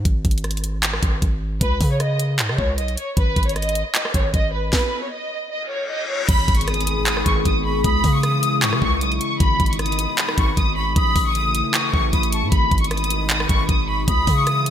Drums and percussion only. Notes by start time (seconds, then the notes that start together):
0.05 kick, closed hi-hat
0.25 kick, closed hi-hat
0.31 closed hi-hat
0.38 closed hi-hat
0.44 cross-stick, closed hi-hat
0.51 closed hi-hat
0.57 closed hi-hat
0.64 closed hi-hat
0.83 clap, closed hi-hat
0.93 cross-stick
1.03 kick, closed hi-hat
1.22 kick, closed hi-hat
1.61 kick, closed hi-hat
1.81 kick, open hi-hat
2.00 cross-stick, closed hi-hat
2.20 closed hi-hat
2.39 clap, closed hi-hat
2.49 cross-stick
2.58 kick
2.78 closed hi-hat
2.88 closed hi-hat
2.97 closed hi-hat
3.17 kick, closed hi-hat
3.36 kick, closed hi-hat
3.43 closed hi-hat
3.49 closed hi-hat
3.56 cross-stick, closed hi-hat
3.62 closed hi-hat
3.69 closed hi-hat
3.75 closed hi-hat
3.95 clap, closed hi-hat
4.05 cross-stick
4.14 kick, closed hi-hat
4.34 kick, closed hi-hat
4.73 kick, snare
6.29 kick, closed hi-hat, crash
6.48 kick, closed hi-hat
6.55 closed hi-hat
6.61 closed hi-hat
6.68 cross-stick, closed hi-hat
6.74 closed hi-hat
6.81 closed hi-hat
6.87 closed hi-hat
7.06 clap, closed hi-hat
7.17 cross-stick
7.26 kick, closed hi-hat
7.45 kick, closed hi-hat
7.84 kick, closed hi-hat
8.04 kick, open hi-hat
8.23 cross-stick, closed hi-hat
8.43 closed hi-hat
8.62 clap, closed hi-hat
8.73 cross-stick
8.82 kick
9.01 closed hi-hat
9.12 closed hi-hat
9.21 closed hi-hat
9.40 kick, closed hi-hat
9.60 kick, closed hi-hat
9.66 closed hi-hat
9.73 closed hi-hat
9.79 cross-stick, closed hi-hat
9.86 closed hi-hat
9.92 closed hi-hat
9.99 closed hi-hat
10.18 clap, closed hi-hat
10.29 cross-stick
10.38 kick, closed hi-hat
10.57 kick, closed hi-hat
10.96 kick, closed hi-hat
11.16 kick, open hi-hat
11.35 closed hi-hat
11.55 closed hi-hat
11.74 clap, closed hi-hat
11.94 kick
12.13 kick, closed hi-hat
12.23 closed hi-hat
12.32 closed hi-hat
12.52 kick, closed hi-hat
12.71 kick, closed hi-hat
12.78 closed hi-hat
12.84 closed hi-hat
12.91 cross-stick, closed hi-hat
12.97 closed hi-hat
13.04 closed hi-hat
13.10 closed hi-hat
13.30 clap, closed hi-hat
13.40 cross-stick
13.49 kick, closed hi-hat
13.69 kick, closed hi-hat
14.08 kick, closed hi-hat
14.27 kick, open hi-hat
14.47 cross-stick, closed hi-hat
14.66 closed hi-hat